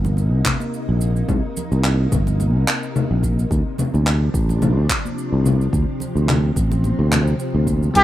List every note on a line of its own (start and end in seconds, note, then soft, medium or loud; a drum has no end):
0.00 0.33 G1 medium
0.00 8.04 C3 medium
0.00 3.47 A#3 medium
0.00 3.47 D#4 medium
0.05 low conga medium
0.05 shaker soft
0.17 low conga medium
0.17 shaker soft
0.33 0.41 C2 medium
0.45 kick medium
0.45 clap medium
0.45 low conga medium
0.45 shaker medium
0.60 high conga medium
0.60 shaker soft
0.74 shaker soft
0.89 1.22 A#1 medium
1.01 shaker medium
1.16 shaker soft
1.29 1.39 C2 medium
1.29 kick loud
1.29 low conga medium
1.29 shaker soft
1.57 low conga medium
1.57 shaker medium
1.72 2.05 C2 medium
1.72 shaker soft
1.84 clap medium
1.84 shaker soft
2.12 2.55 G1 medium
2.12 kick loud
2.12 low conga medium
2.12 shaker medium
2.27 low conga medium
2.27 shaker soft
2.40 high conga medium
2.40 low conga medium
2.40 shaker soft
2.55 2.63 C2 medium
2.68 clap medium
2.68 shaker medium
2.83 shaker soft
2.96 low conga medium
2.96 shaker soft
3.11 3.44 A#1 medium
3.23 kick medium
3.23 high conga medium
3.23 shaker medium
3.39 shaker soft
3.51 3.61 D2 medium
3.51 7.91 F3 medium
3.51 5.71 D4 medium
3.51 kick loud
3.51 shaker soft
3.78 low conga medium
3.78 shaker medium
3.94 4.28 D2 medium
3.94 high conga medium
3.94 shaker soft
4.07 clap medium
4.07 shaker soft
4.34 4.77 A1 medium
4.34 kick loud
4.34 shaker medium
4.49 low conga medium
4.49 shaker soft
4.62 low conga medium
4.62 shaker soft
4.77 4.86 D2 medium
4.90 kick medium
4.90 clap medium
4.90 shaker medium
5.05 high conga medium
5.05 shaker soft
5.18 shaker soft
5.32 5.66 C2 medium
5.46 low conga medium
5.46 shaker medium
5.61 shaker soft
5.73 5.83 D2 medium
5.73 7.93 C4 medium
5.73 kick loud
5.73 shaker soft
6.00 low conga medium
6.00 shaker medium
6.15 6.50 D2 medium
6.15 shaker soft
6.29 clap medium
6.29 low conga medium
6.29 shaker soft
6.56 6.91 A1 medium
6.56 kick loud
6.56 shaker medium
6.72 low conga medium
6.72 shaker soft
6.84 high conga medium
6.84 low conga medium
6.84 shaker soft
6.99 7.33 D2 medium
7.12 clap medium
7.12 low conga medium
7.12 shaker medium
7.27 shaker soft
7.40 shaker soft
7.55 7.89 D2 medium
7.67 kick medium
7.67 high conga medium
7.67 shaker medium
7.83 shaker soft
7.94 8.04 C2 loud
7.94 8.04 D#3 medium
7.94 8.04 G3 medium
7.94 8.04 A#3 medium
7.94 8.04 C4 medium
7.94 8.04 D4 medium
7.94 8.04 D#4 medium
7.94 8.04 G4 medium
7.94 8.04 A#4 loud
7.94 kick loud
7.94 open hi-hat medium
7.94 shaker soft